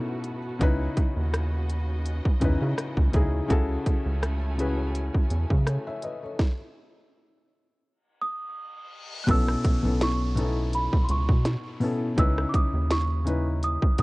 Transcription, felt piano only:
0.00 0.63 B2 medium
0.00 0.63 B3 medium
0.00 0.60 C#4 medium
0.00 0.61 D#4 medium
0.00 0.62 E4 medium
0.00 0.63 G#4 medium
0.00 0.40 A4 medium
0.59 1.75 C#3 loud
0.59 1.75 C#4 loud
0.59 1.76 D#4 loud
0.59 1.76 E4 loud
0.59 1.77 B4 loud
2.40 2.99 C#3 medium
2.40 3.00 C#4 medium
2.40 3.00 D#4 medium
2.40 3.01 E4 medium
2.40 3.01 B4 medium
3.12 3.42 C#3 medium
3.12 3.43 C#4 medium
3.12 3.43 D#4 medium
3.12 3.44 E4 medium
3.12 3.44 G#4 loud
3.48 4.36 C#3 loud
3.48 4.36 C#4 loud
3.48 4.37 E4 loud
3.48 4.37 F#4 medium
3.48 4.38 G#4 loud
3.48 4.38 A4 loud
4.57 5.16 C#3 medium
4.57 5.16 C#4 medium
4.57 5.17 E4 medium
4.57 5.17 F#4 medium
4.57 5.18 G#4 medium
4.57 5.18 B4 medium
5.67 5.86 A4 medium
5.67 5.86 C#5 medium
5.87 6.03 C#5 medium
5.87 6.03 E5 medium
6.03 6.22 B4 medium
6.03 6.22 D#5 medium
6.23 6.58 A4 medium
6.23 6.57 C#5 medium
9.27 9.71 B2 loud
9.27 9.72 B3 medium
9.27 9.72 C#4 medium
9.27 9.72 E4 medium
9.27 9.73 A4 loud
9.82 10.26 B2 medium
9.82 10.26 B3 medium
9.82 10.27 C#4 medium
9.82 10.27 E4 medium
9.82 10.28 A4 medium
10.35 11.51 B2 medium
10.35 11.51 B3 medium
10.35 11.52 C#4 medium
10.35 10.44 D#4 medium
10.35 11.53 A4 medium
10.44 11.55 E4 medium
11.80 12.10 B2 medium
11.80 12.10 B3 medium
11.80 12.11 C#4 medium
11.80 12.11 E4 medium
11.80 12.12 A4 medium
12.16 13.04 C#3 medium
12.16 13.04 C#4 medium
12.16 13.05 D#4 medium
12.16 13.05 E4 medium
12.16 13.06 B4 loud
13.25 14.03 C#3 medium
13.25 14.03 C#4 medium
13.25 14.03 D#4 medium
13.25 14.03 E4 medium
13.25 14.03 B4 medium

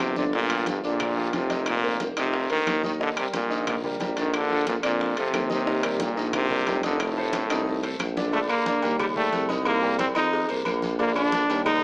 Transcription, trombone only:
0.00 0.16 C3 loud
0.18 0.26 C3 medium
0.35 0.65 A#2 loud
0.69 0.86 G2 medium
0.85 1.37 A#2 medium
1.35 1.68 C3 medium
1.69 1.99 A#2 loud
2.19 2.49 C3 loud
2.52 2.82 D#3 loud
2.85 2.92 D#3 medium
3.03 3.10 D3 loud
3.19 3.26 C3 medium
3.35 3.65 A#2 medium
3.68 3.76 A#2 medium
4.19 4.37 D#3 loud
4.36 4.68 D3 loud
4.68 4.76 A#2 medium
4.86 5.16 A#2 medium
5.20 5.49 C3 medium
5.52 5.98 C3 medium
6.03 6.33 A#2 medium
6.36 6.81 C3 loud
6.85 7.03 D3 medium
7.02 8.01 A2 medium
8.33 8.40 A3 loud
8.50 8.96 A#3 medium
8.99 9.07 G3 medium
9.16 9.47 A3 medium
9.66 9.97 A#3 loud
10.00 10.07 C4 loud
10.17 10.47 D#4 loud
10.99 11.15 A#3 loud
11.15 11.62 D4 loud
11.66 11.84 D#4 loud

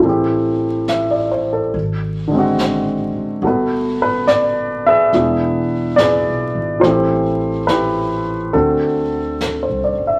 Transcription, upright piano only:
0.00 1.71 E3 soft
0.00 1.73 A3 soft
0.00 0.21 G#4 soft
0.05 1.74 C4 soft
0.09 1.77 G4 soft
0.89 1.30 E5 soft
1.11 1.47 D5 soft
1.31 1.57 C5 soft
1.53 1.82 A4 soft
2.27 3.41 D3 soft
2.27 3.43 G#3 soft
2.35 3.45 C4 soft
2.35 3.41 F#4 medium
3.43 5.13 A3 soft
3.43 5.13 B3 soft
3.43 5.12 F#4 soft
3.47 4.01 B4 soft
4.02 4.26 B4 medium
4.27 4.87 D5 medium
4.86 5.13 G#4 medium
4.86 5.98 B4 medium
4.86 6.01 E5 medium
5.14 6.78 E3 soft
5.14 6.84 B3 soft
5.14 6.84 D4 soft
5.14 5.98 G#4 medium
5.96 6.80 G#4 medium
5.96 6.80 B4 soft
5.96 6.78 D5 medium
6.80 8.52 E3 soft
6.80 8.53 A3 soft
6.80 7.63 C5 medium
6.84 8.53 C4 soft
6.84 7.69 E4 soft
6.84 6.89 G4 soft
6.91 7.69 G4 medium
7.67 8.51 E4 soft
7.67 8.51 G4 soft
7.67 8.49 B4 medium
8.53 10.20 D3 soft
8.53 10.20 A3 soft
8.53 10.20 C4 soft
8.53 10.20 F#4 soft
8.53 9.40 A4 medium
9.42 9.82 A4 soft
9.63 10.00 C5 soft
9.84 10.10 D5 soft
10.07 10.20 E5 soft

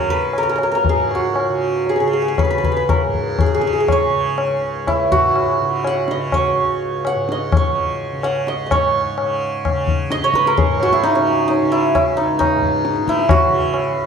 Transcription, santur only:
0.00 1.14 F#4 medium
0.00 0.89 G#4 medium
0.00 0.16 A#4 medium
0.00 0.28 C#5 medium
0.10 0.44 B4 medium
0.38 0.42 A#4 medium
0.43 0.49 A#4 medium
0.49 0.55 A#4 medium
0.56 0.63 A#4 medium
0.63 0.71 A#4 medium
0.72 0.75 A#4 medium
0.72 2.45 A#4 medium
0.89 1.89 G#4 medium
1.15 4.40 F#4 medium
1.89 1.95 G#4 medium
1.96 2.00 G#4 medium
2.00 2.07 G#4 medium
2.08 2.13 G#4 soft
2.13 2.21 G#4 medium
2.22 2.28 G#4 medium
2.28 3.40 G#4 medium
2.39 2.44 B4 medium
2.45 2.50 B4 medium
2.50 2.58 B4 medium
2.58 2.64 B4 medium
2.64 2.71 B4 medium
2.72 2.76 B4 medium
2.77 2.95 B4 medium
2.89 5.74 A#4 medium
3.40 3.46 G#4 medium
3.46 3.54 G#4 medium
3.54 3.61 G#4 medium
3.61 3.67 G#4 medium
3.67 3.73 G#4 medium
3.73 3.80 G#4 medium
3.80 6.83 G#4 medium
3.92 6.34 C#5 medium
4.88 6.17 E4 medium
5.12 8.37 F#4 loud
5.87 7.06 F#5 medium
6.11 7.31 D#5 medium
6.34 7.56 C#5 medium
7.07 8.24 F#5 medium
7.32 8.48 D#5 medium
7.57 8.71 C#5 medium
8.24 10.39 F#5 medium
8.48 8.66 D#5 medium
8.66 10.11 D#5 soft
8.72 10.24 C#5 medium
10.11 10.99 D#5 loud
10.24 12.79 C#5 medium
10.35 10.53 B4 loud
10.47 13.32 A#4 medium
10.57 13.60 G#4 medium
10.83 13.30 F#4 medium
10.93 11.09 E4 medium
11.03 11.47 D#4 medium
11.15 14.06 C#4 medium
11.48 11.78 D#4 medium
11.72 11.95 E4 medium
11.95 12.23 E4 medium
12.17 12.39 D#4 medium
12.39 13.15 D#4 loud
13.09 14.06 E4 medium
13.31 14.06 F#4 loud

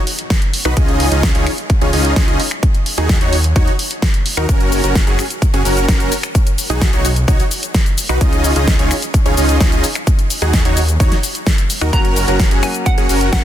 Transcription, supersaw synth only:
0.65 0.74 D#4 loud
0.65 0.74 F#4 medium
0.65 0.74 B4 loud
0.77 1.09 C#4 loud
0.77 1.09 D#4 medium
0.77 1.09 F4 medium
0.77 1.09 G#4 medium
0.77 1.09 D#5 loud
1.12 1.32 C#4 medium
1.12 1.32 D#4 medium
1.12 1.32 F4 medium
1.12 1.32 G#4 medium
1.12 1.32 D#5 medium
1.35 1.50 C#4 medium
1.35 1.50 D#4 medium
1.35 1.50 F4 medium
1.35 1.50 G#4 medium
1.35 1.50 C#5 medium
1.81 1.90 C#4 loud
1.81 1.90 D#4 medium
1.81 1.90 F4 medium
1.81 1.90 G#4 medium
1.81 1.90 C#5 loud
1.93 2.14 C#4 medium
1.93 2.14 D#4 medium
1.93 2.14 F4 medium
1.93 2.14 G#4 medium
1.93 2.14 D#5 medium
2.16 2.41 C#4 loud
2.16 2.41 D#4 medium
2.16 2.41 F4 medium
2.16 2.41 G#4 medium
2.16 2.41 D#5 loud
2.98 3.18 D#4 loud
2.98 3.18 F#4 medium
2.98 3.18 G#4 loud
3.21 3.36 D#4 loud
3.21 3.36 F#4 medium
3.21 3.36 C#5 loud
3.56 3.71 D#4 loud
3.56 3.71 F#4 medium
3.56 3.71 C#5 loud
4.37 4.46 D#4 loud
4.37 4.46 F#4 medium
4.37 4.46 A#4 loud
4.49 4.81 C#4 loud
4.49 4.81 F#4 medium
4.49 4.81 A#4 loud
4.84 5.04 C#4 medium
4.84 5.04 F#4 medium
4.84 5.04 A#4 medium
5.07 5.22 C#4 medium
5.07 5.22 F#4 medium
5.07 5.22 G#4 medium
5.54 5.62 C#4 loud
5.54 5.62 F#4 medium
5.54 5.62 G#4 loud
5.65 5.86 C#4 medium
5.65 5.86 F#4 medium
5.65 5.86 A#4 medium
5.88 6.13 C#4 loud
5.88 6.13 F#4 medium
5.88 6.13 A#4 loud
6.70 6.90 D#4 loud
6.70 6.90 F#4 medium
6.70 6.90 G#4 loud
6.93 7.08 D#4 loud
6.93 7.08 F#4 medium
6.93 7.08 C#5 loud
7.28 7.43 D#4 medium
7.28 7.43 F#4 medium
7.28 7.43 C#5 loud
8.09 8.18 D#4 loud
8.09 8.18 F#4 medium
8.09 8.18 B4 loud
8.21 8.53 C#4 loud
8.21 8.53 D#4 medium
8.21 8.53 F4 medium
8.21 8.53 G#4 medium
8.21 8.53 D#5 loud
8.56 8.76 C#4 medium
8.56 8.76 D#4 medium
8.56 8.76 F4 medium
8.56 8.76 G#4 medium
8.56 8.76 D#5 medium
8.79 8.94 C#4 medium
8.79 8.94 D#4 medium
8.79 8.94 F4 medium
8.79 8.94 G#4 medium
8.79 8.94 C#5 loud
9.26 9.34 C#4 medium
9.26 9.34 D#4 medium
9.26 9.34 F4 medium
9.26 9.34 G#4 medium
9.26 9.35 C#5 loud
9.37 9.58 C#4 medium
9.37 9.58 D#4 medium
9.37 9.58 F4 medium
9.37 9.58 G#4 medium
9.37 9.58 D#5 medium
9.61 9.85 C#4 medium
9.61 9.85 D#4 medium
9.61 9.85 F4 medium
9.61 9.85 G#4 medium
9.61 9.85 D#5 loud
10.42 10.62 D#4 loud
10.42 10.62 F#4 medium
10.42 10.62 G#4 loud
10.65 10.80 D#4 loud
10.65 10.80 F#4 medium
10.65 10.80 C#5 loud
11.00 11.15 D#4 loud
11.00 11.15 F#4 medium
11.00 11.15 C#5 loud
11.81 11.90 D#4 loud
11.81 11.90 F#4 medium
11.81 11.90 A#4 loud
11.93 12.25 C#4 loud
11.93 12.25 F#4 loud
11.93 12.25 A#4 loud
12.28 12.48 C#4 medium
12.28 12.48 F#4 medium
12.28 12.48 A#4 loud
12.51 12.66 C#4 medium
12.51 12.66 F#4 medium
12.51 12.66 G#4 loud
12.98 13.07 C#4 loud
12.98 13.07 F#4 medium
12.98 13.07 G#4 loud
13.09 13.30 C#4 medium
13.09 13.30 F#4 medium
13.09 13.30 A#4 medium
13.33 13.44 C#4 loud
13.33 13.44 F#4 medium
13.33 13.44 A#4 loud

